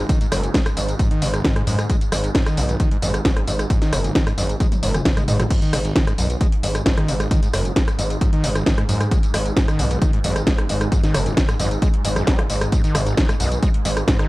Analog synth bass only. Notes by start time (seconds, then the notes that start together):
0.32 F#1
0.77 G#1
1.22 G#1
1.44 G#2
1.67 G#2
2.12 G#1
2.57 B1
3.02 G#1
3.48 G#1
3.93 F#1
4.38 G#1
4.83 F#1
5.05 G#1
5.28 G#1
5.73 G#1
6.18 B1
6.63 G#1
6.86 G#1
7.08 G#1
7.54 F#1
7.99 G#1
8.44 G#1
8.66 G#2
8.89 G#2
9.34 G#1
9.79 B1
10.24 G#1
10.69 G#1
11.14 F#1
11.60 G#1
12.05 G#1
12.27 G#1
12.50 G#1
12.95 G#1
13.40 B1
13.85 G#1
14.08 G#1